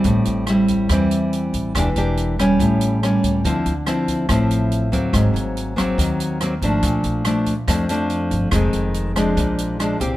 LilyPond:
<<
  \new Staff \with { instrumentName = "Nylon-string guitar" } { \time 4/4 \key a \phrygian \tempo 4 = 142 << { <g bis e'>4 <g c' e'>4 <g c' e'>2 | <bes d' g'>8 <bes d' g'>4 <g des'>4. <g bes cis'>4 | <f c' e'>8 r8 <f c' e'>4 <f c' e'>4. <ges bes c'>8~ | <ges bes c'>4. <ges bes c'>4. <ges bes c'>8 <f a d'>8~ |
<f a d'>4 <f a d'>8 r8 <f a d'>8 <f a d'>4. | <ees aes c'>4. <f aes d'>4. <f aes d'>8 <bes c' g'>8 | } \\ { a,2 e2 | e2 a,2 | d2 a,2 | aes,2 ees2 |
bes,2 f,2 | f,2 bes,2 | } >> }
  \new Staff \with { instrumentName = "Upright bass" } { \clef bass \time 4/4 \key a \phrygian a,,8 a,,4. e,4. a,,8 | e,,8 e,,4. a,,4. cis,8 | d,8 d,4. a,,4. d,8 | aes,,8 aes,,4. ees,4. aes,,8 |
bes,,8 bes,,4. f,4. g,,8 | f,,8 f,,4. bes,,4. c,8 | }
  \new DrumStaff \with { instrumentName = "Drums" } \drummode { \time 4/4 <hh bd>8 hh8 <hh ss>8 <hh bd>8 <hh bd ss>8 hh8 hh8 <hh bd>8 | <hh bd ss>8 hh8 hh8 <hh bd ss>8 <hh bd>8 hh8 <hh ss>8 <hh bd>8 | <hh bd>8 hh8 <hh ss>8 <hh bd>8 <hh bd ss>8 hh8 hh8 <hh bd>8 | <hh bd ss>8 hh8 hh8 <hh bd ss>8 <hh bd>8 hh8 <hh ss>8 <hh bd>8 |
<hh bd>8 hh8 <hh ss>8 <hh bd>8 <hh bd ss>8 hh8 hh8 <hh bd>8 | <hh bd ss>8 hh8 hh8 <hh bd ss>8 <hh bd>8 hh8 <hh ss>8 <hh bd>8 | }
>>